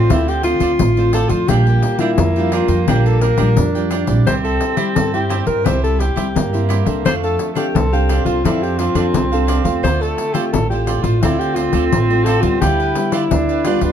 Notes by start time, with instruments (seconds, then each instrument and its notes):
Already playing: tenor saxophone C4, alto saxophone F4
0.10 upright bass D2, nylon-string guitar D3 A3 C4 F4, alto saxophone E4, cavaquinho F4 A4 C5 D5, pandeiro
0.28 alto saxophone G4, pandeiro
0.43 nylon-string guitar A3 C4 F4, cavaquinho F4 A4 C5 D5, alto saxophone F4, pandeiro
0.60 upright bass D2, cavaquinho F4 A4 C5 D5, pandeiro
0.79 upright bass A1, nylon-string guitar A2, pandeiro
0.97 nylon-string guitar A3 C4 F4, cavaquinho A4 C5 D5, pandeiro
1.13 cavaquinho F4 A4 C5 D5, alto saxophone A4, pandeiro
1.29 upright bass F2, alto saxophone F4, cavaquinho A4 C5 D5, pandeiro
1.48 upright bass A#1, nylon-string guitar A#2 G3 D4 F4, tenor saxophone A#3, cavaquinho D4 A#4 D5 G5, alto saxophone G4, pandeiro
1.67 cavaquinho A#4 D5 G5, pandeiro
1.83 pandeiro
1.99 nylon-string guitar G3 D4 F4, cavaquinho D4 A#4 D5 G5, alto saxophone E4, pandeiro
2.18 upright bass F2, nylon-string guitar F3, pandeiro
2.36 nylon-string guitar G3 D4 F4, cavaquinho A#4 D5 G5, pandeiro
2.52 cavaquinho D4 A#4 D5 G5, alto saxophone F4, pandeiro
2.68 upright bass F2, cavaquinho A#4 D5 G5, pandeiro
2.88 upright bass A#1, nylon-string guitar A#2 G3 D4 F4, cavaquinho D4 A#4 D5 G5, alto saxophone G4, pandeiro
3.06 alto saxophone A4, pandeiro
3.21 cavaquinho D4 A#4 D5 G5, alto saxophone A#4, pandeiro
3.38 upright bass A#1, nylon-string guitar G3 D4 F4, cavaquinho D4 A#4 D5 G5, pandeiro
3.57 upright bass F2, nylon-string guitar F3, tenor saxophone D4, pandeiro
3.75 nylon-string guitar G3 D4 F4, cavaquinho A#4 D5 G5, pandeiro
3.90 cavaquinho D4 A#4 D5 G5, pandeiro
4.07 upright bass A#1, nylon-string guitar G3 C4 E4, cavaquinho A#4 D5 G5, pandeiro
4.26 upright bass C2, nylon-string guitar C3, tenor saxophone C4, cavaquinho E4 G4 C5 E5, alto saxophone C5, pandeiro
4.44 cavaquinho G4 C5 E5, alto saxophone A4, pandeiro
4.61 pandeiro
4.77 nylon-string guitar G3 C4 E4, cavaquinho E4 G4 C5 E5, alto saxophone G4, pandeiro
4.96 nylon-string guitar G2, upright bass G2, alto saxophone A4, pandeiro
5.14 nylon-string guitar G3 C4 E4, alto saxophone G4, cavaquinho G4 C5 E5, pandeiro
5.29 cavaquinho E4 G4 C5 E5, pandeiro
5.46 upright bass G2, cavaquinho G4 C5 E5, alto saxophone A#4, pandeiro
5.65 upright bass C2, nylon-string guitar C3 G3 C4 E4, cavaquinho E4 G4 C5 E5, alto saxophone C5, pandeiro
5.84 alto saxophone A4, pandeiro
5.98 cavaquinho E4 G4 C5 E5, alto saxophone G4, pandeiro
6.16 upright bass C2, nylon-string guitar G3 C4 E4, cavaquinho E4 G4 C5 E5, pandeiro
6.35 upright bass G2, nylon-string guitar G2, tenor saxophone A#3, pandeiro
6.53 nylon-string guitar G3 C4 E4, cavaquinho G4 C5 E5, pandeiro
6.69 cavaquinho E4 G4 C5 E5, pandeiro
6.86 upright bass C2, nylon-string guitar C4 D4 A4, cavaquinho G4 C5 E5, pandeiro
7.05 upright bass F2, nylon-string guitar F3, tenor saxophone A3, cavaquinho D4 A4 D5 F5, alto saxophone C5, pandeiro
7.23 alto saxophone A4, cavaquinho A4 D5 F5, pandeiro
7.39 pandeiro
7.53 nylon-string guitar C4 D4 A4, cavaquinho D4 A4 D5 F5, alto saxophone G4 A4, pandeiro
7.74 upright bass C2, nylon-string guitar C3, tenor saxophone C4, alto saxophone A4, pandeiro
7.93 nylon-string guitar C4 D4 A4, alto saxophone G4, cavaquinho A4 D5 F5, pandeiro
8.09 cavaquinho D4 A4 D5 F5, pandeiro
8.25 upright bass C2, alto saxophone F4, cavaquinho A4 D5 F5, pandeiro
8.44 upright bass F2, nylon-string guitar F3 C4 D4 A4, tenor saxophone C4, cavaquinho D4 A4 D5 F5, alto saxophone E4, pandeiro
8.62 alto saxophone G4, pandeiro
8.78 cavaquinho D4 A4 D5 F5, alto saxophone F4, pandeiro
8.95 upright bass F2, nylon-string guitar C4 D4 A4, cavaquinho D4 A4 D5 F5, pandeiro
9.14 upright bass C2, nylon-string guitar C3, pandeiro
9.32 nylon-string guitar C4 D4 A4, cavaquinho A4 D5 F5, pandeiro
9.47 cavaquinho D4 A4 D5 F5, pandeiro
9.64 upright bass E2, nylon-string guitar A3 C4 F4, cavaquinho A4 D5 F5, pandeiro
9.83 upright bass D2, nylon-string guitar D3, tenor saxophone A3, cavaquinho F4 A4 C5 D5, alto saxophone C5, pandeiro
10.01 alto saxophone A4, cavaquinho A4 C5 D5, pandeiro
10.18 pandeiro
10.34 nylon-string guitar A3 C4 F4, cavaquinho F4 A4 C5 D5, alto saxophone G4, pandeiro
10.53 upright bass A1, nylon-string guitar A2, alto saxophone A4, pandeiro
10.70 nylon-string guitar A3 C4 F4, alto saxophone G4, cavaquinho A4 C5 D5, pandeiro
10.87 cavaquinho F4 A4 C5 D5, pandeiro
11.03 upright bass A1, alto saxophone F4, cavaquinho A4 C5 D5, pandeiro
11.21 upright bass D2, nylon-string guitar D3 A3 C4 F4, tenor saxophone C4, alto saxophone E4, cavaquinho F4 A4 C5 D5, pandeiro
11.39 alto saxophone G4, pandeiro
11.55 alto saxophone F4, cavaquinho F4 A4 C5, pandeiro
11.59 cavaquinho D5
11.72 upright bass D2, nylon-string guitar A3 C4 F4, cavaquinho F4 A4 C5 D5, pandeiro
11.92 upright bass A1, nylon-string guitar A2, pandeiro
12.10 nylon-string guitar A3 C4 F4, cavaquinho A4 C5 D5, pandeiro
12.25 cavaquinho F4 A4 C5 D5, alto saxophone A4, pandeiro
12.41 upright bass D2, nylon-string guitar G3 B3, alto saxophone F4, cavaquinho A4 C5 D5, pandeiro
12.61 upright bass D2, nylon-string guitar D3, tenor saxophone E4, cavaquinho F4 G4 B4 D5, alto saxophone G4, pandeiro
12.80 cavaquinho G4 B4 D5, pandeiro
12.95 nylon-string guitar G3 B3, pandeiro
13.12 alto saxophone E4, cavaquinho F4 G4 B4 D5, pandeiro
13.31 upright bass D2, nylon-string guitar D3, tenor saxophone D4, pandeiro
13.49 cavaquinho G4 B4 D5, pandeiro
13.65 nylon-string guitar G3 B3 F4, cavaquinho F4 G4 B4 D5, alto saxophone F4, pandeiro
13.81 upright bass D2, nylon-string guitar G3 B3 F4, cavaquinho B4 D5, pandeiro